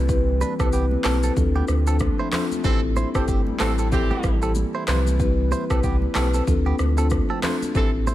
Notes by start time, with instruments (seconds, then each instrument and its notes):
Already playing: sub bass C2, analog synth pad E3 G3 C4 E4 B4
0.09 marimba C4 E4 G4 B4, kick, shaker
0.41 clean electric guitar D4 B4, high conga, shaker
0.59 sub bass C2, marimba C4 E4 G4 B4, clean electric guitar C4 A4, kick, cross-stick, shaker
0.72 clean electric guitar B3 G4, shaker
0.91 high conga
1.04 sub bass B1, marimba C4 E4 G4 B4, clean electric guitar C4 A4, cross-stick, clap, open hi-hat, high conga, shaker
1.23 clean electric guitar C4 A4, shaker
1.36 sub bass D2, analog synth pad F3 A3 D4 F4, marimba C4 D4 F4 A4, kick, low conga, shaker
1.56 clean electric guitar B3 G4, high conga
1.68 sub bass D2, cross-stick, shaker
1.87 marimba C4 D4 F4 A4, clean electric guitar C4 A4, shaker
1.99 kick, cross-stick, high conga, shaker
2.19 clean electric guitar E4 C5
2.32 marimba C4 D4 F4 A4, clean electric guitar E4 C5, cross-stick, clap, open hi-hat, low conga, shaker
2.52 high conga, shaker
2.64 sub bass A1, horn section E3 C4 A4, analog synth pad E3 G3 E4, marimba C4 E4 G4 A4, kick, shaker
2.96 clean electric guitar E4 C5, high conga, shaker
3.14 sub bass G1, horn section A3 G4 C5, marimba C4 E4 G4 A4, clean electric guitar C4 A4, kick, cross-stick, shaker
3.28 clean electric guitar C4 G4, kick, shaker
3.47 high conga
3.60 sub bass A1, horn section E3 C4 A4, marimba C4 E4 G4 A4, clean electric guitar C4 A4, cross-stick, clap, open hi-hat, high conga, shaker
3.78 clean electric guitar C4 A4, shaker
3.92 horn section E3 C4 G4, marimba C4 E4 G4 A4, kick, low conga, shaker
4.11 clean electric guitar B3 G4, high conga
4.23 sub bass A1, kick, cross-stick, shaker
4.42 marimba C4 E4 G4 A4, clean electric guitar C4 A4, shaker
4.55 high conga, shaker
4.75 clean electric guitar E4 C5
4.87 sub bass C2, marimba C4 E4 G4 B4, clean electric guitar E4 C5, analog synth pad B4, cross-stick, clap, open hi-hat, low conga, shaker
5.07 high conga, shaker
5.19 marimba C4 E4 G4 B4, kick, shaker
5.51 clean electric guitar E4 C5, high conga, shaker
5.70 sub bass C2, marimba C4 E4 G4 B4, clean electric guitar C4 A4, kick, cross-stick, shaker
5.83 clean electric guitar B3 G4, kick, shaker
6.02 high conga
6.15 sub bass B1, marimba C4 E4 G4 B4, clean electric guitar C4 A4, cross-stick, clap, open hi-hat, high conga, shaker
6.34 clean electric guitar C4 A4, shaker
6.47 sub bass D2, analog synth pad F3 A3 D4 F4, marimba C4 D4 F4 A4, kick, low conga, shaker
6.66 clean electric guitar B3 G4, high conga
6.79 sub bass D2, cross-stick, shaker
6.98 marimba C4 D4 F4 A4, clean electric guitar C4 A4, shaker
7.10 kick, cross-stick, high conga, shaker
7.30 clean electric guitar C4 A4
7.43 marimba C4 D4 F4 A4, clean electric guitar E4 C5, cross-stick, clap, open hi-hat, low conga, shaker
7.62 high conga, shaker
7.75 sub bass A1, analog synth pad E3 G3 C4 E4, horn section E3 C4 A4, marimba C4 E4 G4 A4, kick, shaker
8.07 clean electric guitar E4 C5, high conga, shaker